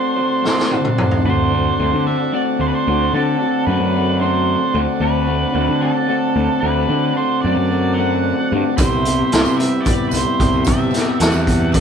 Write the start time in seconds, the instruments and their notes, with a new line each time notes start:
Already playing: clean electric guitar A3 C4 F#4 C5, lead electric guitar C5, transistor combo organ D5 F#5 A5 C6
0.16 clean electric guitar D3 A3 C4 F#4 C5
0.42 clean electric guitar A3 C4 F#4 C5, snare
0.59 snare
0.71 clean electric guitar D3 A3 C4 F#4 C5, high tom
0.85 mid tom
0.98 clean electric guitar A3 C4 F#4 C5, mid tom
1.11 floor tom
1.25 picked electric bass D2, clean electric guitar D3 A3 C4 F#4, lead electric guitar C5, transistor combo organ D5 F#5 A5
1.52 clean electric guitar A3 C4 F#4
1.79 picked electric bass D2, clean electric guitar D3 A3 C4 F#4
1.94 picked electric bass D3
2.06 clean electric guitar A3 C4 F#4, lead electric guitar E5
2.33 clean electric guitar D3 A3 C4 F#4, lead electric guitar D5
2.60 picked electric bass D2, lead electric guitar C5
2.68 lead electric guitar B4
2.75 lead electric guitar C5
2.87 picked electric bass D2, clean electric guitar D3 A3 C4 F#4
3.13 picked electric bass D3, clean electric guitar D3 A3 C4 F#4, lead electric guitar A4
3.41 clean electric guitar A3 C4 F#4
3.66 picked electric bass F#2, clean electric guitar D3 A3 C4 F#4, lead electric guitar B4
3.80 picked electric bass F#2
3.96 clean electric guitar A3 C4 F#4
4.21 clean electric guitar D3 A3 C4 F#4, lead electric guitar C5
4.73 picked electric bass D2, clean electric guitar D3 A3 C4 F#4
5.00 picked electric bass D2, clean electric guitar D3 A3 C4 F#4, lead electric guitar B4
5.27 clean electric guitar A3 C4 F#4
5.53 picked electric bass D2, clean electric guitar D3 A3 C4 F#4
5.69 picked electric bass D3
5.81 clean electric guitar A3 C4 F#4, lead electric guitar A4
6.06 clean electric guitar D3 A3 C4 F#4
6.36 picked electric bass D2
6.60 picked electric bass D2, clean electric guitar D3 A3 C4 F#4, lead electric guitar B4
6.88 clean electric guitar D3 A3 C4 F#4, picked electric bass D3
7.16 clean electric guitar A3 C4 F#4, lead electric guitar C5
7.42 picked electric bass F#2, clean electric guitar D3 A3, lead electric guitar D5
7.46 clean electric guitar C4 F#4
7.57 picked electric bass F#2
7.71 clean electric guitar A3 C4 F#4
7.94 lead electric guitar F#5
7.98 clean electric guitar D3 A3 C4 F#4
8.52 picked electric bass G2, clean electric guitar D3 A3 C4 F#4
8.76 picked electric bass C2, clean electric guitar C3 G3 B3, transistor combo organ G4 E5 B5, lead electric guitar C5, kick, closed hi-hat, tambourine
8.80 clean electric guitar E4
8.92 tambourine
9.05 clean electric guitar G3 B3 E4, closed hi-hat, tambourine
9.32 picked electric bass C2, clean electric guitar C3 G3 B3 E4, snare, closed hi-hat
9.45 picked electric bass C3, tambourine
9.56 clean electric guitar E4, lead electric guitar E5, closed hi-hat
9.61 clean electric guitar G3 B3
9.82 lead electric guitar D5, tambourine
9.86 clean electric guitar C3 G3 B3 E4, kick, closed hi-hat
10.09 picked electric bass C2, lead electric guitar C5, tambourine
10.14 closed hi-hat
10.39 picked electric bass C2, clean electric guitar C3 G3 B3 E4, kick, closed hi-hat
10.53 tambourine
10.63 clean electric guitar C3 G3 B3, picked electric bass C3, lead electric guitar E5, kick, closed hi-hat, tambourine
10.67 clean electric guitar E4, transistor combo organ A5
10.78 tambourine
10.91 clean electric guitar B3 E4, closed hi-hat, tambourine
10.95 clean electric guitar G3, snare
11.20 picked electric bass E2, clean electric guitar C3 G3 B3 E4, lead electric guitar F#5, snare, closed hi-hat
11.32 picked electric bass E2, tambourine
11.47 clean electric guitar G3 B3 E4, kick, closed hi-hat
11.72 clean electric guitar C3 G3 B3 E4, lead electric guitar E5, kick, closed hi-hat, tambourine